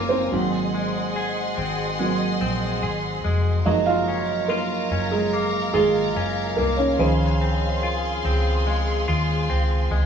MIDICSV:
0, 0, Header, 1, 5, 480
1, 0, Start_track
1, 0, Tempo, 833333
1, 188, Time_signature, 4, 2, 24, 8
1, 5794, End_track
2, 0, Start_track
2, 0, Title_t, "String section"
2, 0, Program_c, 0, 48
2, 0, Note_on_c, 0, 70, 63
2, 0, Note_on_c, 0, 77, 60
2, 0, Note_on_c, 0, 80, 55
2, 0, Note_on_c, 0, 82, 67
2, 169, Note_off_c, 0, 80, 0
2, 171, Note_off_c, 0, 70, 0
2, 171, Note_off_c, 0, 77, 0
2, 171, Note_off_c, 0, 82, 0
2, 192, Note_on_c, 0, 78, 56
2, 194, Note_on_c, 0, 68, 59
2, 196, Note_on_c, 0, 75, 57
2, 197, Note_on_c, 0, 84, 67
2, 2091, Note_off_c, 0, 78, 0
2, 2092, Note_off_c, 0, 68, 0
2, 2093, Note_off_c, 0, 75, 0
2, 2093, Note_off_c, 0, 84, 0
2, 2103, Note_on_c, 0, 82, 55
2, 2104, Note_on_c, 0, 70, 62
2, 2104, Note_on_c, 0, 77, 54
2, 4006, Note_off_c, 0, 82, 0
2, 4007, Note_off_c, 0, 70, 0
2, 4028, Note_on_c, 0, 68, 66
2, 4030, Note_on_c, 0, 84, 56
2, 5794, Note_off_c, 0, 68, 0
2, 5794, Note_off_c, 0, 77, 0
2, 5794, Note_off_c, 0, 84, 0
2, 5794, End_track
3, 0, Start_track
3, 0, Title_t, "Clean electric guitar"
3, 0, Program_c, 1, 27
3, 0, Note_on_c, 1, 54, 68
3, 0, Note_on_c, 1, 58, 48
3, 0, Note_on_c, 1, 61, 51
3, 0, Note_on_c, 1, 65, 52
3, 190, Note_on_c, 1, 44, 62
3, 207, Note_off_c, 1, 54, 0
3, 237, Note_off_c, 1, 61, 0
3, 237, Note_off_c, 1, 65, 0
3, 238, Note_off_c, 1, 58, 0
3, 430, Note_on_c, 1, 56, 46
3, 670, Note_on_c, 1, 68, 52
3, 909, Note_on_c, 1, 60, 46
3, 1141, Note_off_c, 1, 56, 0
3, 1148, Note_on_c, 1, 56, 45
3, 1381, Note_off_c, 1, 60, 0
3, 1388, Note_on_c, 1, 60, 47
3, 1622, Note_off_c, 1, 68, 0
3, 1629, Note_on_c, 1, 68, 47
3, 1861, Note_off_c, 1, 56, 0
3, 1868, Note_on_c, 1, 56, 48
3, 2109, Note_off_c, 1, 44, 0
3, 2109, Note_on_c, 1, 54, 63
3, 2156, Note_off_c, 1, 56, 0
3, 2156, Note_off_c, 1, 60, 0
3, 2156, Note_off_c, 1, 68, 0
3, 2351, Note_on_c, 1, 61, 49
3, 2590, Note_on_c, 1, 65, 57
3, 2829, Note_off_c, 1, 61, 0
3, 2831, Note_on_c, 1, 61, 48
3, 3070, Note_on_c, 1, 58, 50
3, 3306, Note_off_c, 1, 65, 0
3, 3308, Note_on_c, 1, 65, 54
3, 3548, Note_off_c, 1, 61, 0
3, 3550, Note_on_c, 1, 61, 49
3, 3784, Note_off_c, 1, 58, 0
3, 3791, Note_on_c, 1, 58, 50
3, 4029, Note_off_c, 1, 54, 0
3, 4030, Note_on_c, 1, 49, 70
3, 4077, Note_off_c, 1, 58, 0
3, 4269, Note_off_c, 1, 61, 0
3, 4271, Note_on_c, 1, 60, 50
3, 4509, Note_off_c, 1, 65, 0
3, 4511, Note_on_c, 1, 65, 57
3, 4747, Note_off_c, 1, 60, 0
3, 4753, Note_on_c, 1, 60, 49
3, 4992, Note_on_c, 1, 56, 51
3, 5224, Note_off_c, 1, 65, 0
3, 5231, Note_on_c, 1, 65, 55
3, 5464, Note_off_c, 1, 60, 0
3, 5471, Note_on_c, 1, 60, 50
3, 5703, Note_off_c, 1, 56, 0
3, 5710, Note_on_c, 1, 56, 55
3, 5794, Note_off_c, 1, 49, 0
3, 5794, Note_off_c, 1, 56, 0
3, 5794, Note_off_c, 1, 60, 0
3, 5794, Note_off_c, 1, 65, 0
3, 5794, End_track
4, 0, Start_track
4, 0, Title_t, "Felt piano"
4, 0, Program_c, 2, 0
4, 0, Control_c, 2, 64, 127
4, 0, Note_on_c, 2, 53, 39
4, 0, Note_on_c, 2, 56, 38
4, 0, Note_on_c, 2, 58, 52
4, 0, Note_on_c, 2, 60, 62
4, 0, Note_on_c, 2, 61, 66
4, 0, Note_on_c, 2, 70, 71
4, 0, Note_on_c, 2, 72, 76
4, 0, Note_on_c, 2, 73, 86
4, 51, Note_off_c, 2, 72, 0
4, 51, Note_on_c, 2, 72, 68
4, 62, Note_off_c, 2, 58, 0
4, 71, Note_off_c, 2, 60, 0
4, 71, Note_on_c, 2, 60, 53
4, 180, Note_off_c, 2, 60, 0
4, 183, Note_on_c, 2, 54, 41
4, 186, Note_on_c, 2, 58, 39
4, 189, Note_on_c, 2, 60, 45
4, 195, Note_off_c, 2, 56, 0
4, 195, Note_off_c, 2, 61, 0
4, 195, Note_off_c, 2, 70, 0
4, 195, Control_c, 2, 64, 0
4, 196, Note_off_c, 2, 73, 0
4, 200, Note_off_c, 2, 53, 0
4, 281, Control_c, 2, 64, 127
4, 504, Note_off_c, 2, 54, 0
4, 506, Note_off_c, 2, 58, 0
4, 507, Note_off_c, 2, 60, 0
4, 1147, Note_on_c, 2, 54, 37
4, 1148, Note_on_c, 2, 58, 35
4, 1151, Note_on_c, 2, 60, 42
4, 1364, Note_off_c, 2, 54, 0
4, 1365, Note_off_c, 2, 58, 0
4, 1367, Note_off_c, 2, 60, 0
4, 1596, Note_off_c, 2, 72, 0
4, 2105, Note_on_c, 2, 75, 73
4, 2106, Note_on_c, 2, 53, 43
4, 2109, Note_on_c, 2, 56, 40
4, 2112, Note_on_c, 2, 58, 47
4, 2113, Note_on_c, 2, 63, 62
4, 2115, Control_c, 2, 64, 0
4, 2214, Control_c, 2, 64, 127
4, 2222, Note_off_c, 2, 63, 0
4, 2223, Note_on_c, 2, 77, 86
4, 2230, Note_off_c, 2, 75, 0
4, 2234, Note_on_c, 2, 65, 62
4, 2562, Note_off_c, 2, 77, 0
4, 2568, Note_off_c, 2, 65, 0
4, 2582, Note_on_c, 2, 70, 69
4, 2583, Note_off_c, 2, 58, 0
4, 2592, Note_on_c, 2, 58, 58
4, 2804, Note_off_c, 2, 53, 0
4, 2805, Note_off_c, 2, 56, 0
4, 2922, Note_off_c, 2, 70, 0
4, 2927, Note_off_c, 2, 58, 0
4, 2946, Note_on_c, 2, 68, 73
4, 2957, Note_on_c, 2, 56, 54
4, 3289, Note_off_c, 2, 56, 0
4, 3295, Note_off_c, 2, 68, 0
4, 3304, Note_on_c, 2, 68, 89
4, 3316, Note_on_c, 2, 56, 61
4, 3763, Note_off_c, 2, 68, 0
4, 3769, Note_off_c, 2, 56, 0
4, 3782, Note_on_c, 2, 70, 70
4, 3794, Note_on_c, 2, 58, 55
4, 3898, Note_on_c, 2, 73, 70
4, 3903, Note_off_c, 2, 58, 0
4, 3909, Note_off_c, 2, 70, 0
4, 3911, Note_on_c, 2, 61, 58
4, 4021, Note_on_c, 2, 51, 42
4, 4026, Note_on_c, 2, 53, 42
4, 4028, Note_on_c, 2, 72, 50
4, 4036, Control_c, 2, 64, 0
4, 4151, Control_c, 2, 64, 127
4, 4722, Note_off_c, 2, 51, 0
4, 4724, Note_off_c, 2, 53, 0
4, 4725, Note_off_c, 2, 72, 0
4, 5320, Note_off_c, 2, 73, 0
4, 5326, Note_off_c, 2, 61, 0
4, 5794, End_track
5, 0, Start_track
5, 0, Title_t, "Fingered electric bass"
5, 0, Program_c, 3, 33
5, 0, Note_on_c, 3, 30, 59
5, 170, Note_off_c, 3, 30, 0
5, 191, Note_on_c, 3, 32, 80
5, 886, Note_off_c, 3, 32, 0
5, 909, Note_on_c, 3, 32, 70
5, 1366, Note_off_c, 3, 32, 0
5, 1391, Note_on_c, 3, 34, 59
5, 1613, Note_off_c, 3, 34, 0
5, 1628, Note_on_c, 3, 32, 65
5, 1851, Note_off_c, 3, 32, 0
5, 1869, Note_on_c, 3, 29, 63
5, 2092, Note_off_c, 3, 29, 0
5, 2109, Note_on_c, 3, 30, 78
5, 2806, Note_off_c, 3, 30, 0
5, 2829, Note_on_c, 3, 30, 69
5, 3285, Note_off_c, 3, 30, 0
5, 3307, Note_on_c, 3, 32, 70
5, 3530, Note_off_c, 3, 32, 0
5, 3548, Note_on_c, 3, 30, 76
5, 3771, Note_off_c, 3, 30, 0
5, 3789, Note_on_c, 3, 36, 71
5, 4012, Note_off_c, 3, 36, 0
5, 4028, Note_on_c, 3, 37, 83
5, 4725, Note_off_c, 3, 37, 0
5, 4749, Note_on_c, 3, 37, 74
5, 5205, Note_off_c, 3, 37, 0
5, 5232, Note_on_c, 3, 39, 71
5, 5453, Note_off_c, 3, 39, 0
5, 5471, Note_on_c, 3, 37, 72
5, 5692, Note_off_c, 3, 37, 0
5, 5707, Note_on_c, 3, 37, 74
5, 5794, Note_off_c, 3, 37, 0
5, 5794, End_track
0, 0, End_of_file